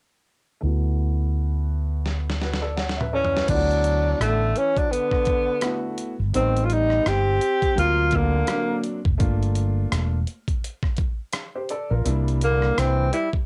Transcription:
0.61 fretless electric bass D2, upright piano A3 B3 E4 F#4
2.06 snare
2.30 snare
2.41 upright piano F#4 B4, snare
2.53 snare
2.61 upright piano A4 D5
2.76 upright piano C#5 F#5, snare
2.89 snare
2.97 upright piano B4 E5, mid tom
3.13 trombone E3, tenor saxophone C#4, upright piano A4 D5
3.24 floor tom
3.32 upright piano F#4 B4
3.37 snare
3.46 fretless electric bass D2, upright piano A3 B3 E4 F4, tenor saxophone D4, kick, closed hi-hat, crash
3.52 trombone F#3, upright piano F#4
3.71 closed hi-hat
3.84 closed hi-hat
4.20 fretless electric bass A1, trombone D3, tenor saxophone A3, cross-stick, closed hi-hat
4.56 trombone E3, tenor saxophone C#4, closed hi-hat
4.76 trombone F#3, tenor saxophone D4, kick, closed hi-hat
4.91 trombone D3, tenor saxophone B3, closed hi-hat
5.11 kick, cross-stick
5.25 kick, closed hi-hat
5.61 upright piano A3 B3 E4 F#4, cross-stick, closed hi-hat
5.98 closed hi-hat
6.19 fretless electric bass G1
6.33 fretless electric bass A1, trombone D#3, upright piano G3 B3 C4 D#4, tenor saxophone C4, closed hi-hat
6.57 closed hi-hat
6.63 trombone A3, tenor saxophone F4
6.70 trombone G3, tenor saxophone D#4, closed hi-hat
6.90 cross-stick
7.05 fretless electric bass G1, trombone C4, tenor saxophone G4, cross-stick, closed hi-hat
7.41 closed hi-hat
7.62 kick, closed hi-hat
7.76 fretless electric bass D2, upright piano F#3 A#3 C4 F4, trombone A#3, tenor saxophone F4, closed hi-hat
8.11 trombone D3, kick, closed hi-hat
8.16 tenor saxophone A#3
8.47 upright piano F#3 A#3 C4 D4, cross-stick, closed hi-hat
8.84 closed hi-hat
9.05 fretless electric bass F1, kick
9.18 fretless electric bass G1, upright piano A3 A#3 D4 F4, kick, closed hi-hat
9.43 closed hi-hat
9.55 closed hi-hat
9.92 fretless electric bass E1, cross-stick, closed hi-hat
10.27 closed hi-hat
10.48 kick, closed hi-hat
10.64 closed hi-hat
10.83 kick, cross-stick
10.97 kick, closed hi-hat
11.33 cross-stick, closed hi-hat
11.55 upright piano G4 C5
11.69 upright piano A4 D5, closed hi-hat
11.90 fretless electric bass A#1, upright piano F4 A#4
12.04 fretless electric bass C2, upright piano G3 A#3 D4 E4, closed hi-hat
12.28 closed hi-hat
12.41 trombone D3, tenor saxophone A#3, closed hi-hat
12.62 cross-stick
12.78 fretless electric bass C2, trombone E3, tenor saxophone C4, cross-stick, closed hi-hat
13.12 trombone G3, tenor saxophone E4, closed hi-hat
13.33 kick

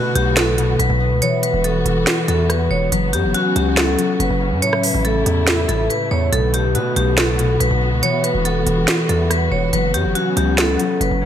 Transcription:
Already playing: 808-style bass B2, harp B2 A3 B3 C#4 E4, string section D3 A3 B3 F#4, vibraphone F#4
0.15 808-style bass B1, vibraphone G4, closed hi-hat
0.37 harp F#4, vibraphone A4, snare, closed hi-hat
0.58 harp B2, closed hi-hat
0.79 808-style bass B1, vibraphone B4, closed hi-hat
0.90 808-style bass B1
1.00 harp B3
1.11 808-style bass C#2
1.22 string section E3 G3 B3 F#4, harp E3, vibraphone C#5, closed hi-hat
1.43 vibraphone B4, closed hi-hat
1.54 808-style bass E1
1.64 harp B3, vibraphone A4, closed hi-hat
1.86 808-style bass E1, closed hi-hat
2.07 harp F#4, snare, closed hi-hat
2.28 808-style bass E2, harp E3, vibraphone A4, closed hi-hat
2.50 vibraphone B4, cross-stick, closed hi-hat
2.71 808-style bass E1, harp B3, vibraphone C#5
2.92 808-style bass F#1, string section C#3 F#3 F#4, harp F#3, vibraphone B4, closed hi-hat
3.13 808-style bass F#2, vibraphone G4, closed hi-hat
3.24 808-style bass F#1
3.34 harp C#4, vibraphone F#4, closed hi-hat
3.56 808-style bass C#2, vibraphone G4, closed hi-hat
3.77 vibraphone A4, harp F#5, snare, closed hi-hat
3.98 harp F#3, closed hi-hat
4.20 808-style bass F#1, vibraphone B4, closed hi-hat
4.30 808-style bass F#1
4.41 harp C#4
4.52 808-style bass F#2
4.62 harp A2, string section G3 A3 E4, vibraphone C#5, closed hi-hat
4.73 cross-stick
4.83 vibraphone B4, open hi-hat
4.94 808-style bass A1
5.05 harp A3, vibraphone A4, closed hi-hat
5.26 808-style bass E2, closed hi-hat
5.47 harp E4, snare, closed hi-hat
5.68 808-style bass A1, harp A2, vibraphone A4, closed hi-hat
5.90 vibraphone B4, closed hi-hat
6.11 808-style bass E2, harp A3, vibraphone C#5
6.32 808-style bass B1, harp B2, string section D3 B3 F#4, vibraphone A4, closed hi-hat
6.54 vibraphone G4, closed hi-hat
6.75 808-style bass B2, harp B3, vibraphone F#4, closed hi-hat
6.96 808-style bass B1, vibraphone G4, closed hi-hat
7.18 harp F#4, vibraphone A4, snare, closed hi-hat
7.39 harp B2, closed hi-hat
7.60 808-style bass B1, vibraphone B4, closed hi-hat
7.71 808-style bass B1
7.81 harp B3
7.92 808-style bass C#2
8.03 string section E3 G3, harp E3, vibraphone C#5, closed hi-hat
8.24 vibraphone B4, closed hi-hat
8.35 808-style bass E1
8.45 harp B3, vibraphone A4, closed hi-hat
8.67 808-style bass E1, closed hi-hat
8.88 harp F#4, snare, closed hi-hat
9.09 808-style bass E2, harp E3, vibraphone A4, closed hi-hat
9.30 vibraphone B4, cross-stick, closed hi-hat
9.52 808-style bass E1, harp B3, vibraphone C#5
9.73 808-style bass F#1, string section C#3 F#3 B3, harp F#3, vibraphone B4, closed hi-hat
9.94 808-style bass F#2, vibraphone G4, closed hi-hat
10.05 808-style bass F#1
10.15 harp C#4, vibraphone F#4, closed hi-hat
10.37 808-style bass C#2, vibraphone G4, closed hi-hat
10.58 vibraphone A4, harp F#5, snare, closed hi-hat
10.79 harp F#3, closed hi-hat
11.01 808-style bass F#1, vibraphone B4, closed hi-hat
11.11 808-style bass F#1
11.22 harp C#4

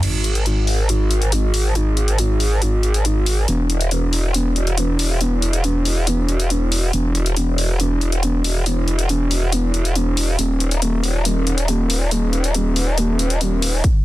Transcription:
0.03 wobble bass G#1, closed hi-hat, crash
0.24 closed hi-hat
0.35 closed hi-hat
0.46 closed hi-hat
0.67 open hi-hat
0.89 closed hi-hat
1.11 closed hi-hat
1.22 closed hi-hat
1.32 closed hi-hat
1.54 open hi-hat
1.75 closed hi-hat
1.97 closed hi-hat
2.08 closed hi-hat
2.18 closed hi-hat
2.40 open hi-hat
2.62 closed hi-hat
2.83 closed hi-hat
2.94 closed hi-hat
3.05 closed hi-hat
3.26 open hi-hat
3.48 wobble bass E1, closed hi-hat
3.70 closed hi-hat
3.81 closed hi-hat
3.91 closed hi-hat
4.13 open hi-hat
4.34 closed hi-hat
4.56 closed hi-hat
4.67 closed hi-hat
4.78 closed hi-hat
4.99 open hi-hat
5.21 closed hi-hat
5.42 closed hi-hat
5.53 closed hi-hat
5.64 closed hi-hat
5.85 open hi-hat
6.07 closed hi-hat
6.29 closed hi-hat
6.40 closed hi-hat
6.50 closed hi-hat
6.72 open hi-hat
6.93 wobble bass E1, closed hi-hat
7.15 closed hi-hat
7.26 closed hi-hat
7.36 closed hi-hat
7.58 open hi-hat
7.80 closed hi-hat
8.01 closed hi-hat
8.12 closed hi-hat
8.23 closed hi-hat
8.44 open hi-hat
8.66 closed hi-hat
8.88 closed hi-hat
8.99 closed hi-hat
9.09 closed hi-hat
9.31 open hi-hat
9.52 closed hi-hat
9.74 closed hi-hat
9.85 closed hi-hat
9.95 closed hi-hat
10.17 open hi-hat
10.39 wobble bass D#1, closed hi-hat
10.60 closed hi-hat
10.71 closed hi-hat
10.82 closed hi-hat
11.04 open hi-hat
11.25 closed hi-hat
11.47 closed hi-hat
11.58 closed hi-hat
11.68 closed hi-hat
11.90 open hi-hat
12.11 closed hi-hat
12.33 closed hi-hat
12.44 closed hi-hat
12.54 closed hi-hat
12.76 open hi-hat
12.98 closed hi-hat
13.19 closed hi-hat
13.30 closed hi-hat
13.41 closed hi-hat
13.62 open hi-hat
13.84 kick, closed hi-hat

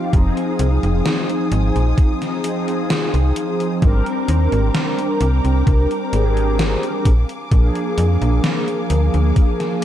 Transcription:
Already playing: analog polysynth F3 C4 D#4 F4, string section F5 D6
0.12 fm bass F1, analog polysynth F3 C4 D#4 G#4, string section C5 G#5 D#6, kick, closed hi-hat
0.37 closed hi-hat
0.59 fm bass C2, closed hi-hat
0.83 fm bass F1, closed hi-hat
1.06 snare, closed hi-hat
1.30 closed hi-hat
1.52 fm bass G#1, closed hi-hat
1.76 fm bass A#1, closed hi-hat
1.98 kick, closed hi-hat
2.22 snare, closed hi-hat
2.42 analog polysynth F3 C4 D#4 G#4, closed hi-hat
2.68 closed hi-hat
2.90 snare, closed hi-hat
3.14 fm bass C2, closed hi-hat
3.36 closed hi-hat
3.60 closed hi-hat
3.81 fm bass G#1, analog polysynth G3 C4 D4 A#4, string section G5 A#5 D6, kick, closed hi-hat
4.06 closed hi-hat
4.28 fm bass D#2, closed hi-hat
4.52 fm bass G#1, closed hi-hat
4.75 snare, closed hi-hat
4.99 closed hi-hat
5.21 fm bass C2, closed hi-hat
5.45 fm bass C2, closed hi-hat
5.67 fm bass C2, kick, closed hi-hat
5.91 closed hi-hat
6.12 fm bass G#1, analog polysynth C4 D4 G4 G#4, closed hi-hat
6.37 closed hi-hat
6.59 snare, closed hi-hat
6.83 closed hi-hat
7.05 fm bass A#1, string section A#4 F5 G#5, kick, closed hi-hat
7.29 closed hi-hat
7.50 fm bass A#1, analog polysynth F3 A#3 D4 G#4, kick, closed hi-hat
7.75 closed hi-hat
7.98 fm bass F2, closed hi-hat
8.22 fm bass A#1, closed hi-hat
8.44 snare, closed hi-hat
8.68 closed hi-hat
8.90 fm bass D2, closed hi-hat
9.14 fm bass D2, closed hi-hat
9.36 kick, closed hi-hat
9.60 snare, closed hi-hat

